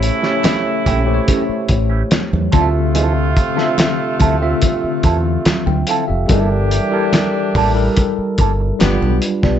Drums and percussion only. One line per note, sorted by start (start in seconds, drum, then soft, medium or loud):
0.03 closed hi-hat medium
0.23 snare soft
0.44 snare loud
0.44 clap medium
0.44 closed hi-hat medium
0.44 high conga medium
0.86 kick medium
0.86 closed hi-hat medium
0.86 muted conga soft
1.28 kick medium
1.28 closed hi-hat medium
1.28 muted conga soft
1.69 kick loud
1.69 closed hi-hat medium
2.11 snare loud
2.11 clap medium
2.11 closed hi-hat medium
2.11 high conga medium
2.33 high conga medium
2.52 kick loud
2.52 closed hi-hat medium
2.95 closed hi-hat medium
2.95 muted conga soft
3.37 kick medium
3.37 closed hi-hat medium
3.58 snare soft
3.78 snare loud
3.78 clap medium
3.78 closed hi-hat medium
3.78 high conga medium
4.20 kick medium
4.20 closed hi-hat medium
4.20 muted conga medium
4.62 kick medium
4.62 closed hi-hat loud
4.62 muted conga soft
5.03 kick medium
5.03 closed hi-hat medium
5.45 snare loud
5.45 clap medium
5.45 closed hi-hat medium
5.45 high conga medium
5.67 high conga medium
5.87 closed hi-hat medium
6.29 kick loud
6.29 closed hi-hat medium
6.29 muted conga soft
6.71 closed hi-hat medium
7.13 snare loud
7.13 clap medium
7.13 closed hi-hat medium
7.13 high conga medium
7.55 kick medium
7.55 open hi-hat soft
7.55 muted conga soft
7.97 kick medium
7.97 closed hi-hat loud
7.97 muted conga soft
8.38 kick medium
8.38 closed hi-hat medium
8.38 muted conga soft
8.80 snare loud
8.80 clap medium
8.80 closed hi-hat medium
8.80 high conga medium
9.02 high conga medium
9.22 closed hi-hat medium
9.43 kick medium
9.43 snare soft